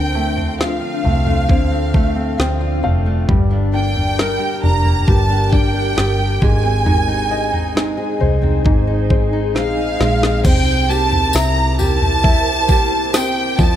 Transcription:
Already playing: fingered electric bass D2, steel-string acoustic guitar D3 F3 C4 F4, grand piano D3, ambient pad D4 A4 C5 F5, violin section G5
0.14 steel-string acoustic guitar A3, grand piano A3
0.36 steel-string acoustic guitar C4, floor tom
0.58 steel-string acoustic guitar F3, grand piano F4, violin section F5, snare
0.81 steel-string acoustic guitar F4
1.04 fingered electric bass C2, grand piano A3, steel-string acoustic guitar C4, floor tom
1.26 steel-string acoustic guitar A3, floor tom
1.49 fingered electric bass D2, steel-string acoustic guitar D3, grand piano C4, ambient pad D5, kick, floor tom
1.71 steel-string acoustic guitar C4
1.94 steel-string acoustic guitar A3, grand piano A3, kick
2.16 steel-string acoustic guitar C4
2.38 fingered electric bass D2, steel-string acoustic guitar F3, grand piano C4 G5, snare
2.61 steel-string acoustic guitar F4
2.83 fingered electric bass F1, grand piano A3 F5, steel-string acoustic guitar C4, floor tom
3.06 steel-string acoustic guitar A3
3.28 fingered electric bass G1, steel-string acoustic guitar G2, grand piano G3, ambient pad G4 A#4 G5, kick, floor tom
3.51 steel-string acoustic guitar D4
3.73 steel-string acoustic guitar A#3, grand piano D4, violin section G5
3.95 steel-string acoustic guitar D4, floor tom
4.18 steel-string acoustic guitar G3, grand piano A#4, snare
4.40 steel-string acoustic guitar G4
4.63 fingered electric bass F1, steel-string acoustic guitar D4, grand piano D4, violin section A#5, floor tom
4.85 steel-string acoustic guitar A#3, floor tom
5.07 fingered electric bass G1, steel-string acoustic guitar G2, grand piano G4, violin section A5, kick, floor tom
5.30 steel-string acoustic guitar D4
5.52 steel-string acoustic guitar A#3, grand piano D4, violin section G5, kick
5.74 steel-string acoustic guitar D4
5.96 fingered electric bass G1, steel-string acoustic guitar G3, grand piano G4, snare
6.19 steel-string acoustic guitar G4
6.41 fingered electric bass G#1, steel-string acoustic guitar G#2, grand piano G#3, ambient pad D#4 G#4 C5 G#5, violin section G#5, kick, floor tom
6.63 steel-string acoustic guitar C4
6.85 steel-string acoustic guitar G#2, grand piano D#4, floor tom
7.08 steel-string acoustic guitar D#4
7.30 steel-string acoustic guitar C4, grand piano D#5
7.52 steel-string acoustic guitar D#4, floor tom
7.75 steel-string acoustic guitar G#3, grand piano D#4, snare
7.97 steel-string acoustic guitar G#4
8.20 fingered electric bass C2, steel-string acoustic guitar D#4, grand piano C5, floor tom
8.42 steel-string acoustic guitar C4, floor tom
8.64 fingered electric bass G#1, steel-string acoustic guitar G#2, grand piano D#4, kick, floor tom
8.87 steel-string acoustic guitar D#4
9.10 steel-string acoustic guitar C4, grand piano C5, kick
9.33 steel-string acoustic guitar D#4
9.55 fingered electric bass A#1, steel-string acoustic guitar G#3, grand piano D#4, violin section F5, snare
9.77 steel-string acoustic guitar G#4
9.99 fingered electric bass A#1, grand piano G#3, steel-string acoustic guitar D#4, snare
10.21 steel-string acoustic guitar C4, snare
10.44 fingered electric bass C2, steel-string acoustic guitar C3, grand piano C4, ambient pad E4 A#4 C5 G5, violin section G5, kick, floor tom, crash, tambourine
10.88 steel-string acoustic guitar A#3, grand piano G4, violin section A5, tambourine
11.12 floor tom
11.33 fingered electric bass C2, steel-string acoustic guitar E4, grand piano E5, violin section A#5, snare, tambourine
11.79 steel-string acoustic guitar A#3, grand piano G4, violin section A5, floor tom, tambourine
12.02 floor tom
12.23 steel-string acoustic guitar E4, grand piano E5, kick, floor tom
12.68 steel-string acoustic guitar A#3, grand piano G4, kick, tambourine
13.13 grand piano C4, steel-string acoustic guitar G4, violin section G5, snare, tambourine
13.58 steel-string acoustic guitar F2, grand piano F3, violin section A5, kick, floor tom, tambourine

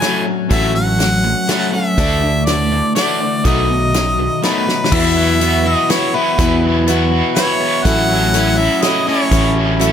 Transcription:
Already playing: harmonica G#5
0.01 overdriven electric guitar A2 F#3 A3, steel-string acoustic guitar F#3 A3 C#4 F#4, snare, closed hi-hat
0.25 overdriven electric guitar A2 F#3
0.49 fingered electric bass A1, overdriven electric guitar A2 F#3 A3, steel-string acoustic guitar A2 F#3 A3 C#4 F#4, harmonica E5, kick, closed hi-hat
0.74 overdriven electric guitar A2 F#3, harmonica F#5
0.99 overdriven electric guitar A2 F#3, steel-string acoustic guitar F#3 A3 C#4 F#4, snare, closed hi-hat
1.24 overdriven electric guitar A2 F#3
1.47 overdriven electric guitar A2 F#3 A3, steel-string acoustic guitar F#3 A3 C#4 F#4, snare, closed hi-hat
1.72 overdriven electric guitar A2 F#3, steel-string acoustic guitar A3 C#4 F#4, harmonica E5
1.97 fingered electric bass D2, overdriven electric guitar D3 A3 D4, steel-string acoustic guitar D3 E3 A3 D4 F#4, kick, closed hi-hat
2.23 overdriven electric guitar D3 A3
2.45 overdriven electric guitar D3 A3, steel-string acoustic guitar E3 A3 D4, harmonica D5, snare, closed hi-hat
2.49 steel-string acoustic guitar F#4
2.72 overdriven electric guitar D3 A3
2.95 overdriven electric guitar D3 A3 D4, steel-string acoustic guitar E3 A3 D4 F#4, harmonica D5, snare, closed hi-hat
3.20 overdriven electric guitar D3 A3
3.44 fingered electric bass B1, overdriven electric guitar B2 D#3 A3, steel-string acoustic guitar B2 F#3 A3 D#4 F#4, harmonica D#5, kick, closed hi-hat
3.70 overdriven electric guitar B2 D#3
3.94 overdriven electric guitar B2 D#3, steel-string acoustic guitar F#3 A3 D#4 F#4, snare, closed hi-hat
4.19 overdriven electric guitar B2 D#3
4.42 overdriven electric guitar B2 D#3 A3, steel-string acoustic guitar F#3 A3 D#4 F#4, harmonica B4, snare, closed hi-hat
4.68 overdriven electric guitar B2 D#3, snare
4.84 snare
4.91 steel-string acoustic guitar E2 B2 E3 B3 E4 F#4, fingered electric bass E2, overdriven electric guitar E2, upright piano E4 F#4 B4 E5, harmonica E5, kick, crash
5.17 overdriven electric guitar F#3
5.40 steel-string acoustic guitar E3 B3 E4 F#4, overdriven electric guitar B3, upright piano E4 F#4 B4 E5, closed hi-hat
5.65 steel-string acoustic guitar E3 B3 E4 F#4, overdriven electric guitar F#4, harmonica D#5
5.89 steel-string acoustic guitar E3 B3 E4 F#4, overdriven electric guitar E4, upright piano E4 F#4 B4 E5, harmonica C#5, snare, closed hi-hat
6.14 steel-string acoustic guitar E3 B3 E4 F#4, overdriven electric guitar B3, harmonica B4
6.38 overdriven electric guitar E2, steel-string acoustic guitar E2 B2 E3 B3 E4 F#4, fingered electric bass E2, kick, closed hi-hat
6.63 overdriven electric guitar F#3
6.86 steel-string acoustic guitar E3 B3 E4 F#4, overdriven electric guitar B3, upright piano E4 F#4 B4 E5, closed hi-hat
7.11 overdriven electric guitar F#4
7.35 steel-string acoustic guitar E3 B3 E4 F#4, upright piano E4 F#4 B4 E5, overdriven electric guitar E4, harmonica C#5, snare, closed hi-hat
7.61 overdriven electric guitar B3
7.84 fingered electric bass A1, steel-string acoustic guitar A2 F#3 A3 C#4 E4, overdriven electric guitar A2, upright piano F#4 A4 C#5 E5, harmonica F#5, kick, closed hi-hat
8.10 overdriven electric guitar F#3
8.34 steel-string acoustic guitar F#3 A3 C#4 E4, overdriven electric guitar C#4, upright piano F#4 A4 C#5 E5, closed hi-hat
8.58 steel-string acoustic guitar A3 C#4 E4, overdriven electric guitar F#4, harmonica E5
8.82 steel-string acoustic guitar F#3 A3 C#4 E4, overdriven electric guitar E4, upright piano F#4 A4 C#5 F#5, harmonica D#5, snare, closed hi-hat
9.07 steel-string acoustic guitar A3 C#4 E4, overdriven electric guitar C#4, harmonica C#5
9.31 fingered electric bass A1, steel-string acoustic guitar A2 F#3 A3 C#4 E4, overdriven electric guitar A2, kick, closed hi-hat
9.56 overdriven electric guitar F#3
9.80 steel-string acoustic guitar F#3 A3 C#4 E4, overdriven electric guitar C#4, upright piano F#4 A4 C#5 E5, closed hi-hat

